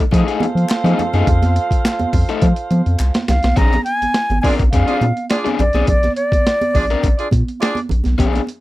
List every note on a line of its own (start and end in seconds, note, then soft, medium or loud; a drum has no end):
0.00 closed hi-hat soft
0.11 0.23 F3 loud
0.11 0.26 A3 medium
0.11 0.26 D#4 medium
0.11 3.25 F4 medium
0.11 0.26 G#4 medium
0.11 3.25 A4 medium
0.11 3.25 C5 medium
0.11 3.25 F5 medium
0.11 kick medium
0.11 closed hi-hat medium
0.11 muted conga soft
0.28 0.44 A3 medium
0.28 0.44 D#4 medium
0.28 0.43 G#4 loud
0.28 closed hi-hat medium
0.40 0.47 F3 medium
0.40 closed hi-hat medium
0.40 muted conga soft
0.40 high conga medium
0.55 0.65 F3 loud
0.55 closed hi-hat soft
0.69 snare loud
0.69 clap loud
0.69 closed hi-hat medium
0.84 0.94 F3 medium
0.84 1.01 A3 medium
0.84 1.01 D#4 medium
0.84 1.00 G#4 medium
0.84 closed hi-hat medium
0.84 high conga medium
0.99 closed hi-hat medium
0.99 low conga medium
1.13 1.23 F#2 medium
1.13 1.27 A3 soft
1.13 1.26 D#4 medium
1.13 1.26 G#4 medium
1.13 snare soft
1.13 closed hi-hat soft
1.13 high conga medium
1.27 1.59 F2 loud
1.27 kick loud
1.27 closed hi-hat medium
1.27 muted conga soft
1.27 low conga medium
1.42 snare soft
1.42 closed hi-hat soft
1.42 high conga medium
1.56 closed hi-hat medium
1.56 muted conga soft
1.71 kick medium
1.71 closed hi-hat medium
1.85 snare loud
1.85 clap medium
1.85 closed hi-hat medium
1.99 2.06 F2 soft
1.99 closed hi-hat soft
1.99 high conga medium
2.13 2.24 F2 medium
2.13 kick medium
2.13 open hi-hat medium
2.13 muted conga soft
2.13 low conga medium
2.29 2.45 A3 medium
2.29 2.45 D#4 medium
2.29 2.45 A4 medium
2.29 closed hi-hat soft
2.42 2.53 F3 loud
2.42 kick loud
2.42 closed hi-hat medium
2.42 muted conga soft
2.56 closed hi-hat medium
2.71 2.82 F3 loud
2.71 closed hi-hat medium
2.71 high conga medium
2.86 2.96 F2 loud
2.86 closed hi-hat soft
2.98 3.11 C2 loud
2.98 clap loud
2.98 closed hi-hat medium
2.98 muted conga soft
3.14 snare medium
3.14 closed hi-hat medium
3.14 high conga medium
3.28 3.40 C2 medium
3.28 3.59 F5 medium
3.28 snare loud
3.28 closed hi-hat medium
3.28 low conga medium
3.43 3.54 B1 medium
3.43 snare medium
3.43 closed hi-hat soft
3.43 high conga medium
3.56 3.78 A#1 loud
3.56 3.74 C4 medium
3.56 3.74 D4 medium
3.56 3.75 G#4 loud
3.56 3.84 A#5 loud
3.56 kick loud
3.56 closed hi-hat medium
3.56 muted conga soft
3.56 low conga medium
3.73 snare soft
3.73 closed hi-hat soft
3.73 high conga medium
3.84 4.39 G#5 loud
3.84 closed hi-hat medium
4.02 4.07 G#1 soft
4.02 closed hi-hat medium
4.02 high conga medium
4.14 snare medium
4.14 closed hi-hat medium
4.14 muted conga soft
4.30 4.40 G#1 medium
4.30 closed hi-hat soft
4.30 high conga medium
4.41 4.61 C4 medium
4.41 4.54 D4 loud
4.41 4.61 D4 medium
4.41 4.54 F4 loud
4.41 4.54 G#4 medium
4.41 4.62 A#4 medium
4.41 4.54 D5 loud
4.41 4.48 G#5 medium
4.41 kick medium
4.41 open hi-hat medium
4.41 low conga medium
4.59 4.69 A#1 medium
4.59 kick medium
4.59 closed hi-hat soft
4.71 4.84 F2 loud
4.71 4.87 C4 medium
4.71 4.86 D4 medium
4.71 4.86 G#4 medium
4.71 5.25 F5 medium
4.71 kick medium
4.71 closed hi-hat medium
4.71 muted conga soft
4.87 5.04 C4 medium
4.87 4.96 D4 medium
4.87 5.04 D4 medium
4.87 4.96 F4 medium
4.87 4.96 G#4 medium
4.87 5.03 G#4 medium
4.87 4.96 D5 medium
4.87 closed hi-hat medium
5.01 5.12 A#2 loud
5.01 closed hi-hat medium
5.01 muted conga soft
5.01 high conga medium
5.17 closed hi-hat soft
5.29 5.48 D4 medium
5.29 5.48 F4 medium
5.29 5.48 G#4 medium
5.29 5.48 D5 medium
5.29 snare loud
5.29 closed hi-hat medium
5.29 muted conga soft
5.45 5.61 C4 medium
5.45 5.61 D4 medium
5.45 5.61 G#4 medium
5.45 closed hi-hat medium
5.45 high conga medium
5.59 5.70 A#1 medium
5.59 5.86 D5 medium
5.59 closed hi-hat medium
5.59 muted conga soft
5.59 low conga medium
5.73 5.84 B1 medium
5.73 5.87 C4 soft
5.73 5.87 D4 soft
5.73 5.87 G#4 medium
5.73 snare soft
5.73 closed hi-hat soft
5.73 high conga medium
5.87 6.09 A#1 loud
5.87 6.15 D5 loud
5.87 kick loud
5.87 closed hi-hat medium
5.87 low conga medium
6.03 snare soft
6.03 closed hi-hat soft
6.03 high conga medium
6.16 7.28 D5 loud
6.16 closed hi-hat medium
6.32 6.37 A#1 soft
6.32 kick loud
6.32 closed hi-hat medium
6.32 high conga medium
6.46 snare medium
6.46 closed hi-hat medium
6.46 muted conga soft
6.61 closed hi-hat soft
6.61 high conga medium
6.74 6.96 A#1 medium
6.74 6.84 D4 loud
6.74 6.84 F4 medium
6.74 6.84 G#4 medium
6.74 6.84 D5 loud
6.74 kick medium
6.74 open hi-hat medium
6.74 low conga medium
6.90 7.07 C4 medium
6.90 7.06 D4 medium
6.90 7.06 A#4 medium
6.90 closed hi-hat soft
7.03 7.15 A#1 medium
7.03 kick medium
7.03 closed hi-hat medium
7.03 muted conga soft
7.17 7.27 D4 medium
7.17 7.27 F4 medium
7.17 7.27 G#4 medium
7.17 7.27 D5 medium
7.17 closed hi-hat soft
7.31 7.43 A#2 medium
7.31 kick medium
7.31 closed hi-hat medium
7.31 high conga medium
7.48 closed hi-hat soft
7.60 7.79 D4 loud
7.60 7.79 F4 medium
7.60 7.79 G#4 medium
7.60 7.79 D5 loud
7.60 snare loud
7.60 closed hi-hat medium
7.60 muted conga soft
7.75 closed hi-hat medium
7.75 high conga medium
7.89 8.02 A#1 loud
7.89 closed hi-hat medium
7.89 muted conga soft
7.89 low conga medium
8.04 8.15 B1 medium
8.04 snare soft
8.04 closed hi-hat soft
8.04 high conga medium
8.18 8.40 A#1 loud
8.18 8.39 C4 medium
8.18 8.40 D4 medium
8.18 8.40 G#4 medium
8.18 kick loud
8.18 closed hi-hat medium
8.18 muted conga soft
8.18 low conga medium
8.33 snare soft
8.33 closed hi-hat medium
8.33 high conga medium
8.47 closed hi-hat medium
8.47 muted conga soft